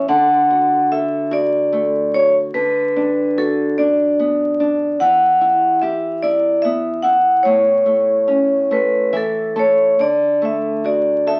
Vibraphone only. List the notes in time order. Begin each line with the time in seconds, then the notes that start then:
0.09 F#5
0.92 E5
1.33 D5
2.14 C#5
2.54 B4
3.38 A4
3.78 D5
5.00 F#5
5.82 E5
6.22 D5
6.62 E5
7.03 F#5
7.43 C#5
8.73 B4
9.17 A4
9.59 C#5
10.01 D5
10.45 E5
10.86 D5
11.28 E5